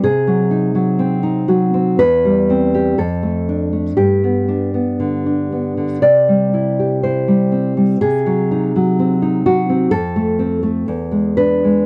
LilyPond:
\new Staff \with { instrumentName = "Nylon-string guitar" } { \time 2/4 \key g \mixolydian \tempo 4 = 61 << { aes'4. ges'8 | b'4 a'4 | g'4. r8 | d''4 c''4 |
aes'4. ges'8 | \key e \phrygian a'4. b'8 | } \\ { c16 ges16 ees'16 ges16 c'16 ees'16 ges16 c'16 | e,16 g16 c'16 g'16 f,16 a16 d'16 a16 | g,16 b16 d'16 b16 d16 d'16 b16 d16 | c16 g16 e'16 g'16 e'16 g16 c'16 g16 |
c16 ges16 ees'16 ges16 c'16 ees'16 ges16 c'16 | f,16 a16 c'16 a16 e,16 gis16 d'16 gis16 | } >> }